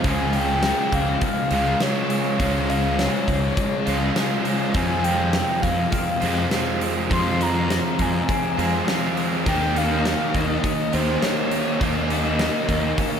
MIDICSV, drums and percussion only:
0, 0, Header, 1, 2, 480
1, 0, Start_track
1, 0, Key_signature, -4, "minor"
1, 0, Tempo, 587659
1, 42, Time_signature, 4, 2, 24, 8
1, 10780, End_track
2, 0, Start_track
2, 0, Title_t, "Drums"
2, 34, Note_on_c, 9, 46, 76
2, 36, Note_on_c, 9, 36, 103
2, 116, Note_off_c, 9, 46, 0
2, 118, Note_off_c, 9, 36, 0
2, 271, Note_on_c, 9, 46, 57
2, 352, Note_off_c, 9, 46, 0
2, 512, Note_on_c, 9, 38, 100
2, 512, Note_on_c, 9, 46, 79
2, 594, Note_off_c, 9, 38, 0
2, 594, Note_off_c, 9, 46, 0
2, 755, Note_on_c, 9, 36, 85
2, 757, Note_on_c, 9, 46, 59
2, 837, Note_off_c, 9, 36, 0
2, 839, Note_off_c, 9, 46, 0
2, 992, Note_on_c, 9, 46, 73
2, 994, Note_on_c, 9, 36, 112
2, 1073, Note_off_c, 9, 46, 0
2, 1076, Note_off_c, 9, 36, 0
2, 1230, Note_on_c, 9, 46, 55
2, 1312, Note_off_c, 9, 46, 0
2, 1474, Note_on_c, 9, 38, 96
2, 1474, Note_on_c, 9, 46, 69
2, 1556, Note_off_c, 9, 38, 0
2, 1556, Note_off_c, 9, 46, 0
2, 1715, Note_on_c, 9, 46, 55
2, 1797, Note_off_c, 9, 46, 0
2, 1958, Note_on_c, 9, 36, 110
2, 1962, Note_on_c, 9, 46, 66
2, 2040, Note_off_c, 9, 36, 0
2, 2044, Note_off_c, 9, 46, 0
2, 2203, Note_on_c, 9, 46, 55
2, 2285, Note_off_c, 9, 46, 0
2, 2443, Note_on_c, 9, 38, 93
2, 2443, Note_on_c, 9, 46, 72
2, 2525, Note_off_c, 9, 38, 0
2, 2525, Note_off_c, 9, 46, 0
2, 2678, Note_on_c, 9, 36, 80
2, 2683, Note_on_c, 9, 46, 53
2, 2760, Note_off_c, 9, 36, 0
2, 2764, Note_off_c, 9, 46, 0
2, 2916, Note_on_c, 9, 46, 68
2, 2918, Note_on_c, 9, 36, 108
2, 2998, Note_off_c, 9, 46, 0
2, 2999, Note_off_c, 9, 36, 0
2, 3159, Note_on_c, 9, 46, 50
2, 3241, Note_off_c, 9, 46, 0
2, 3399, Note_on_c, 9, 38, 108
2, 3399, Note_on_c, 9, 46, 63
2, 3480, Note_off_c, 9, 38, 0
2, 3480, Note_off_c, 9, 46, 0
2, 3636, Note_on_c, 9, 46, 54
2, 3718, Note_off_c, 9, 46, 0
2, 3874, Note_on_c, 9, 46, 69
2, 3877, Note_on_c, 9, 36, 102
2, 3956, Note_off_c, 9, 46, 0
2, 3959, Note_off_c, 9, 36, 0
2, 4119, Note_on_c, 9, 46, 58
2, 4201, Note_off_c, 9, 46, 0
2, 4355, Note_on_c, 9, 38, 108
2, 4355, Note_on_c, 9, 46, 69
2, 4437, Note_off_c, 9, 38, 0
2, 4437, Note_off_c, 9, 46, 0
2, 4599, Note_on_c, 9, 46, 53
2, 4600, Note_on_c, 9, 36, 80
2, 4681, Note_off_c, 9, 36, 0
2, 4681, Note_off_c, 9, 46, 0
2, 4837, Note_on_c, 9, 46, 83
2, 4840, Note_on_c, 9, 36, 106
2, 4919, Note_off_c, 9, 46, 0
2, 4922, Note_off_c, 9, 36, 0
2, 5077, Note_on_c, 9, 46, 56
2, 5159, Note_off_c, 9, 46, 0
2, 5320, Note_on_c, 9, 38, 99
2, 5320, Note_on_c, 9, 46, 72
2, 5402, Note_off_c, 9, 38, 0
2, 5402, Note_off_c, 9, 46, 0
2, 5565, Note_on_c, 9, 46, 58
2, 5647, Note_off_c, 9, 46, 0
2, 5807, Note_on_c, 9, 36, 106
2, 5810, Note_on_c, 9, 46, 73
2, 5888, Note_off_c, 9, 36, 0
2, 5892, Note_off_c, 9, 46, 0
2, 6051, Note_on_c, 9, 46, 56
2, 6133, Note_off_c, 9, 46, 0
2, 6293, Note_on_c, 9, 38, 105
2, 6293, Note_on_c, 9, 46, 69
2, 6375, Note_off_c, 9, 38, 0
2, 6375, Note_off_c, 9, 46, 0
2, 6526, Note_on_c, 9, 46, 52
2, 6528, Note_on_c, 9, 36, 78
2, 6608, Note_off_c, 9, 46, 0
2, 6610, Note_off_c, 9, 36, 0
2, 6770, Note_on_c, 9, 36, 106
2, 6771, Note_on_c, 9, 46, 72
2, 6852, Note_off_c, 9, 36, 0
2, 6853, Note_off_c, 9, 46, 0
2, 7016, Note_on_c, 9, 46, 48
2, 7098, Note_off_c, 9, 46, 0
2, 7253, Note_on_c, 9, 38, 105
2, 7253, Note_on_c, 9, 46, 71
2, 7335, Note_off_c, 9, 38, 0
2, 7335, Note_off_c, 9, 46, 0
2, 7492, Note_on_c, 9, 46, 50
2, 7573, Note_off_c, 9, 46, 0
2, 7730, Note_on_c, 9, 36, 98
2, 7731, Note_on_c, 9, 46, 69
2, 7812, Note_off_c, 9, 36, 0
2, 7813, Note_off_c, 9, 46, 0
2, 7975, Note_on_c, 9, 46, 54
2, 8056, Note_off_c, 9, 46, 0
2, 8213, Note_on_c, 9, 38, 99
2, 8213, Note_on_c, 9, 46, 68
2, 8295, Note_off_c, 9, 38, 0
2, 8295, Note_off_c, 9, 46, 0
2, 8450, Note_on_c, 9, 36, 86
2, 8450, Note_on_c, 9, 46, 57
2, 8532, Note_off_c, 9, 36, 0
2, 8532, Note_off_c, 9, 46, 0
2, 8689, Note_on_c, 9, 36, 100
2, 8692, Note_on_c, 9, 46, 75
2, 8771, Note_off_c, 9, 36, 0
2, 8773, Note_off_c, 9, 46, 0
2, 8929, Note_on_c, 9, 46, 59
2, 9010, Note_off_c, 9, 46, 0
2, 9168, Note_on_c, 9, 38, 96
2, 9168, Note_on_c, 9, 46, 74
2, 9250, Note_off_c, 9, 38, 0
2, 9250, Note_off_c, 9, 46, 0
2, 9405, Note_on_c, 9, 46, 59
2, 9486, Note_off_c, 9, 46, 0
2, 9647, Note_on_c, 9, 36, 103
2, 9649, Note_on_c, 9, 46, 70
2, 9728, Note_off_c, 9, 36, 0
2, 9731, Note_off_c, 9, 46, 0
2, 9886, Note_on_c, 9, 46, 54
2, 9968, Note_off_c, 9, 46, 0
2, 10123, Note_on_c, 9, 38, 99
2, 10123, Note_on_c, 9, 46, 75
2, 10205, Note_off_c, 9, 38, 0
2, 10205, Note_off_c, 9, 46, 0
2, 10362, Note_on_c, 9, 36, 82
2, 10364, Note_on_c, 9, 46, 55
2, 10444, Note_off_c, 9, 36, 0
2, 10446, Note_off_c, 9, 46, 0
2, 10602, Note_on_c, 9, 36, 102
2, 10602, Note_on_c, 9, 46, 74
2, 10684, Note_off_c, 9, 36, 0
2, 10684, Note_off_c, 9, 46, 0
2, 10780, End_track
0, 0, End_of_file